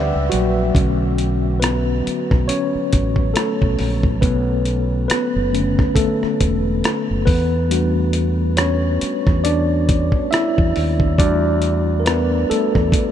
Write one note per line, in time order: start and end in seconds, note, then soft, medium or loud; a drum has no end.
0.00 0.11 D2 medium
0.00 0.71 G3 medium
0.00 0.71 A3 soft
0.00 0.71 D4 soft
0.00 0.28 B4 medium
0.00 0.77 D5 medium
0.00 0.78 E5 loud
0.00 0.78 F#5 loud
0.00 0.77 G5 loud
0.15 0.31 C#2 medium
0.30 1.58 F#3 medium
0.30 1.57 F#4 medium
0.30 closed hi-hat medium
0.34 0.72 A#1 medium
0.73 2.02 B1 medium
0.73 2.01 D3 soft
0.73 2.01 A3 soft
0.73 2.01 C#4 medium
0.73 kick loud
0.73 closed hi-hat medium
1.18 closed hi-hat medium
1.60 2.45 B3 medium
1.60 2.51 B4 medium
1.60 closed hi-hat medium
1.64 cross-stick medium
2.07 muted fingered electric bass stroke soft
2.07 closed hi-hat medium
2.31 2.48 B1 medium
2.31 kick medium
2.31 cross-stick soft
2.48 3.32 C#4 medium
2.48 3.31 C#5 medium
2.48 closed hi-hat medium
2.75 muted fingered electric bass stroke soft
2.93 3.33 A1 medium
2.93 kick medium
2.93 closed hi-hat medium
3.16 kick medium
3.34 4.19 A3 medium
3.34 4.18 A4 medium
3.34 cross-stick medium
3.34 closed hi-hat medium
3.62 3.79 B1 medium
3.62 kick medium
3.79 4.19 A#1 medium
3.79 open hi-hat soft
4.03 kick medium
4.21 5.06 B1 medium
4.21 5.06 B3 medium
4.21 5.05 B4 medium
4.21 kick loud
4.21 closed hi-hat medium
4.65 closed hi-hat soft
5.08 5.93 B3 medium
5.08 5.99 B4 medium
5.08 cross-stick medium
5.08 closed hi-hat medium
5.36 5.75 F#1 medium
5.53 6.14 D3 medium
5.53 5.96 A3 medium
5.53 6.14 C#4 medium
5.53 closed hi-hat medium
5.79 kick medium
5.79 cross-stick soft
5.95 7.23 A3 medium
5.95 7.30 A4 medium
5.95 kick medium
5.95 closed hi-hat medium
6.23 muted fingered electric bass stroke soft
6.23 cross-stick soft
6.41 6.80 E1 medium
6.41 kick medium
6.41 closed hi-hat medium
6.84 cross-stick medium
6.84 closed hi-hat medium
7.11 7.27 F#1 medium
7.26 8.98 E2 loud
7.26 8.54 B3 medium
7.26 8.53 B4 medium
7.26 kick medium
7.26 open hi-hat soft
7.70 8.97 G3 medium
7.70 8.97 A3 soft
7.70 8.98 D4 soft
7.70 8.98 F#4 medium
7.70 closed hi-hat medium
8.13 closed hi-hat medium
8.57 9.41 C#4 medium
8.57 9.47 C#5 medium
8.57 cross-stick loud
8.57 closed hi-hat medium
9.01 muted fingered electric bass stroke soft
9.01 closed hi-hat medium
9.27 10.10 E2 medium
9.27 kick medium
9.27 cross-stick soft
9.44 10.28 D4 medium
9.44 10.34 D5 medium
9.44 closed hi-hat medium
9.89 kick medium
9.89 closed hi-hat medium
10.12 kick medium
10.31 11.15 E4 medium
10.31 11.21 E5 medium
10.31 cross-stick loud
10.31 closed hi-hat medium
10.58 10.75 E2 medium
10.58 kick medium
10.76 11.19 D#2 medium
10.76 open hi-hat soft
11.00 kick medium
11.18 12.45 E2 medium
11.18 13.12 G3 medium
11.18 12.50 A3 soft
11.18 11.97 D4 medium
11.18 13.12 F#4 medium
11.18 12.02 D5 medium
11.18 kick loud
11.18 closed hi-hat medium
11.62 closed hi-hat medium
12.00 12.06 A#4 medium
12.06 12.47 B3 medium
12.06 12.51 B4 medium
12.06 cross-stick loud
12.06 closed hi-hat medium
12.50 13.12 A3 medium
12.50 13.12 A4 medium
12.50 muted fingered electric bass stroke soft
12.50 closed hi-hat medium
12.75 12.92 E2 medium
12.75 kick medium
12.75 cross-stick soft
12.92 kick medium
12.92 closed hi-hat medium